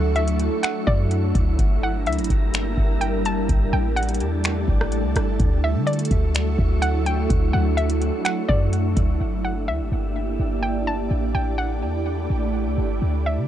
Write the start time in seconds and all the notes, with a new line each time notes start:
Already playing: D2 F#3 A3 D4 E4 F#4 A4 E5 F#5 C#6
0.16 E5, closed hi-hat
0.28 closed hi-hat
0.39 closed hi-hat
0.63 F#5, finger snap, closed hi-hat
0.87 F#2 D5, kick
1.11 closed hi-hat
1.35 D2, kick, closed hi-hat
1.59 G1 G3 A#3 G4 A#4 E5 A#5, kick, closed hi-hat
1.83 F#5
2.06 D2 E5, closed hi-hat
2.12 closed hi-hat
2.18 G1, closed hi-hat
2.24 closed hi-hat
2.30 G1, kick, closed hi-hat
2.54 finger snap, closed hi-hat
2.78 G1, kick
3.01 G5, closed hi-hat
3.25 F#1 A5, closed hi-hat
3.37 G1
3.49 A1 A3 A4 D5 A5, kick, closed hi-hat
3.73 A1 G5
3.96 F#5, closed hi-hat
4.03 closed hi-hat
4.09 closed hi-hat
4.14 closed hi-hat
4.20 E2, closed hi-hat
4.44 finger snap, closed hi-hat
4.68 A1, kick
4.81 cross-stick
4.92 closed hi-hat
5.04 C#2
5.16 G1, cross-stick, closed hi-hat
5.40 D2 F#3 A3 D4 E4 F#4 E5 C#6, kick, closed hi-hat
5.64 E5
5.75 D3
5.87 D5, closed hi-hat
5.93 closed hi-hat
5.99 closed hi-hat
6.05 closed hi-hat
6.11 D2, kick, closed hi-hat
6.35 finger snap, closed hi-hat
6.58 D2, kick
6.82 F#5, closed hi-hat
7.06 G5, closed hi-hat
7.30 D2, kick, closed hi-hat
7.53 D2 F#5
7.77 E5, closed hi-hat
7.90 closed hi-hat
8.02 closed hi-hat
8.25 F#5, finger snap, closed hi-hat
8.48 F#2 D5, kick
8.73 closed hi-hat
8.97 D2, kick, closed hi-hat
9.21 G1 A#3 D4 E4 G4 D5 E5
9.45 F#5
9.68 D2 E5
9.80 G1
9.92 G1
10.39 G1
10.63 G5
10.87 F#1 A5
10.99 G1
11.11 A1 A3 G4 D5
11.35 A1 G5
11.58 F#5
11.82 E2
12.30 A1
12.66 C#2
12.78 G1
13.01 D2 D4 F#4 D5 E5
13.26 E5
13.37 D3